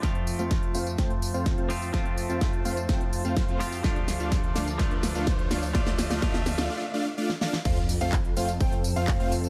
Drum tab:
CC |----------------|----------------|----------------|----------------|
HH |xxoxxxoxxxoxxxo-|xxoxxxoxxxoxxxo-|xxoxxxoxxxoxxxo-|xxoxxxo---------|
TB |x-xxx-xxx-xxx-xx|x-xxx-xxx-xxx-xx|x-xxx-xxx-xxx-xx|x-xxx-xx--------|
CP |----------------|----------------|----------------|----------------|
SD |o---o---o---o---|o---o---o---o---|o-o-o-o-o-o-o-o-|oooooooo-----ooo|
BD |o---o---o---o---|o---o---o---o---|o---o---o---o---|o---o-----------|

CC |x---------------|
HH |xxoxxxoxxxoxxxox|
TB |x-xxx-xxx-xxx-xx|
CP |----x-------x---|
SD |----------------|
BD |o---o---o---o---|